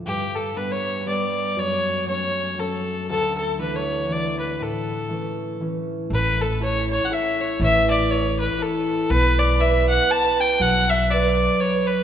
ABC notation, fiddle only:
X:1
M:3/4
L:1/16
Q:"Swing" 1/4=120
K:Amix
V:1 name="Fiddle"
G2 A2 B c3 d4 | c4 c4 A4 | A2 A2 B c3 d2 B2 | A8 z4 |
B2 A2 c2 c3/2 f/2 e2 c2 | e2 d2 c2 B2 A4 | B2 d2 e2 f2 a2 g2 | f2 e2 d4 c2 B2 |]